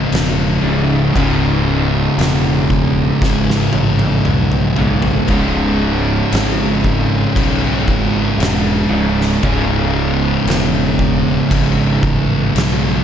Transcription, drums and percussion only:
0.12 snare loud
0.12 crash medium
1.16 kick loud
1.16 crash medium
2.19 snare medium
2.19 crash medium
2.70 kick medium
3.22 kick loud
3.22 snare medium
3.50 snare medium
3.73 high tom medium
3.99 high tom medium
4.25 mid tom medium
4.52 mid tom medium
4.76 floor tom loud
5.02 floor tom loud
5.28 kick loud
5.28 crash medium
6.32 snare loud
6.32 crash medium
6.84 kick medium
7.36 kick loud
7.36 crash medium
7.88 kick medium
8.40 snare loud
8.40 crash medium
9.21 snare soft
9.43 kick medium
9.43 crash medium
10.47 snare medium
10.47 crash medium
10.99 kick medium
11.51 kick loud
11.51 crash medium
12.03 kick medium
12.56 snare loud
12.56 crash medium

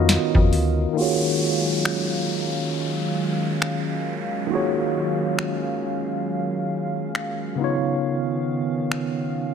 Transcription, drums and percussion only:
0.09 snare loud
0.09 closed hi-hat medium
0.34 kick loud
0.53 open hi-hat medium
1.85 finger snap loud
3.62 finger snap loud
5.39 finger snap loud
7.15 finger snap loud
8.92 finger snap loud

